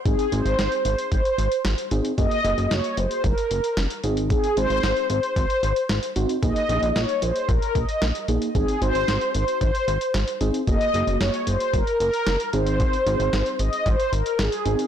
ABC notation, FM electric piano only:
X:1
M:4/4
L:1/8
Q:1/4=113
K:Abmix
V:1 name="FM electric piano"
[CEA] [CEA]3 z3 [CEA] | [B,GA] [B,GA]3 z3 [CEA]- | [CEA] [CEA]3 z3 [CEG] | [B,EA] [B,EA]3 z3 [B,EA] |
[CEA] [CEG]3 z3 [CEA] | [B,GA] [B,GA]3 z3 [CEA]- | [CEA] [CEA]3 z3 [CEA] |]